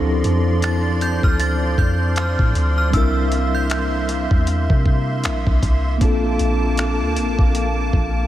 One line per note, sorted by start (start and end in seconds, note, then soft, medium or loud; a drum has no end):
0.00 0.23 D2 loud
0.00 2.88 F3 medium
0.00 2.90 F3 medium
0.00 2.89 C4 medium
0.00 2.90 D4 medium
0.00 2.91 E4 medium
0.00 2.95 A4 medium
0.00 2.90 D5 medium
0.00 5.97 C6 medium
0.24 1.20 F2 loud
0.24 closed hi-hat medium
0.62 0.99 A6 loud
0.62 finger snap loud
0.62 closed hi-hat medium
1.01 1.25 G6 medium
1.01 closed hi-hat medium
1.23 1.76 D2 medium
1.23 1.40 F6 medium
1.23 kick loud
1.40 1.80 A6 loud
1.40 closed hi-hat medium
1.78 2.36 F2 loud
1.78 1.93 G6 loud
1.78 kick medium
2.16 2.74 F6 medium
2.16 finger snap loud
2.16 closed hi-hat medium
2.39 2.55 A2 loud
2.39 kick medium
2.55 2.92 D2 loud
2.55 closed hi-hat medium
2.78 2.94 F6 medium
2.90 4.27 C2 loud
2.90 5.96 G3 medium
2.90 8.27 A#3 medium
2.90 5.96 C4 medium
2.90 5.97 D4 medium
2.90 5.98 E5 medium
2.90 3.50 E6 medium
2.90 kick loud
2.90 closed hi-hat medium
2.95 5.98 E4 medium
2.95 5.99 A#4 medium
3.32 closed hi-hat medium
3.55 5.04 G6 medium
3.70 finger snap loud
3.70 closed hi-hat medium
4.09 closed hi-hat medium
4.31 4.68 E2 medium
4.31 kick loud
4.47 closed hi-hat medium
4.70 5.26 C3 loud
4.70 kick loud
4.86 kick medium
5.24 5.46 A#1 loud
5.24 finger snap loud
5.24 closed hi-hat medium
5.47 5.62 C2 loud
5.47 kick medium
5.63 6.00 C2 loud
5.63 kick medium
5.63 closed hi-hat medium
5.98 6.38 A#1 loud
5.98 8.27 A#3 medium
5.98 8.27 C4 medium
5.98 8.27 D4 medium
5.98 8.27 A5 medium
5.98 8.27 D6 medium
5.98 kick loud
5.98 closed hi-hat medium
6.03 8.27 F4 medium
6.03 8.27 A4 medium
6.39 7.02 A#1 loud
6.39 closed hi-hat medium
6.77 finger snap loud
6.77 closed hi-hat medium
7.01 7.19 D2 loud
7.16 7.38 A#1 loud
7.16 closed hi-hat medium
7.39 7.91 A#1 medium
7.39 kick loud
7.55 closed hi-hat medium
7.93 8.27 A#1 loud
7.93 kick medium